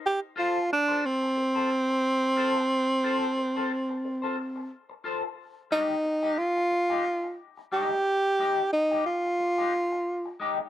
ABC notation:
X:1
M:4/4
L:1/16
Q:"Swing 16ths" 1/4=90
K:Fmix
V:1 name="Clean electric guitar"
z2 [FAc] z2 [FAc] z3 [FAc] z4 [FAc] z | z2 [FAc] z2 [FAc] z3 [FAc] z4 [FAc] z | z2 [_A,EG] z2 [A,EG] z3 [A,EG] z4 [A,EG] z | z2 [_A,EG] z2 [A,EG] z3 [A,EG] z4 [A,EG] z |]
V:2 name="Tenor saxophone"
G2 F2 D2 C8- C2- | C12 z4 | z2 E4 F6 z2 G2- | G4 E2 F8 z2 |]